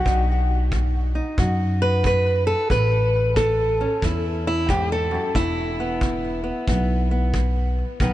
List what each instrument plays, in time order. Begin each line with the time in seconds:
Already playing: steel-string acoustic guitar F#4
0.05 upright bass B1, steel-string acoustic guitar B2 D#4, kick
0.72 steel-string acoustic guitar B2, kick
1.15 steel-string acoustic guitar D#4
1.38 upright bass F#2, steel-string acoustic guitar B2 F#4, kick
1.82 steel-string acoustic guitar B4
2.03 steel-string acoustic guitar B2 B4, kick
2.47 steel-string acoustic guitar A4
2.70 upright bass A1, steel-string acoustic guitar A2 B4, kick
3.36 steel-string acoustic guitar A2 A4, kick
3.81 steel-string acoustic guitar C#4
4.02 upright bass E2, steel-string acoustic guitar A2 E4, kick
4.47 steel-string acoustic guitar E4
4.69 steel-string acoustic guitar G#2 G4, kick
4.92 steel-string acoustic guitar A4
5.11 steel-string acoustic guitar F#2
5.35 upright bass E1, steel-string acoustic guitar E2 E4, kick
5.80 steel-string acoustic guitar B3
6.01 steel-string acoustic guitar E2, kick
6.44 steel-string acoustic guitar B3
6.68 upright bass B1, steel-string acoustic guitar E2 B3, kick
7.11 steel-string acoustic guitar B3
7.34 steel-string acoustic guitar E2, kick
8.00 upright bass B1, steel-string acoustic guitar B2 D#3 B3 B4, kick